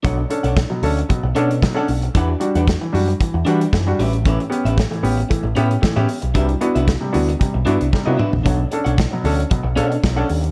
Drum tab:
HH |x-xxx-oxx-xxx-ox|x-xxx-oxx-xxx-ox|xxxxxxoxx-xxx-ox|xxxxx-oxx-xx----|
SD |----o-------o---|----o-------o---|----o-------o---|----o-------o---|
T2 |----------------|----------------|----------------|--------------o-|
FT |----------------|----------------|----------------|---------------o|
BD |o---o---o---o---|o---o---o---o---|o---o---o---o---|o---o---o---o---|

HH |x-xxx-oxx-xxx-ox|
SD |----o-------o---|
T2 |----------------|
FT |----------------|
BD |o---o---o---o---|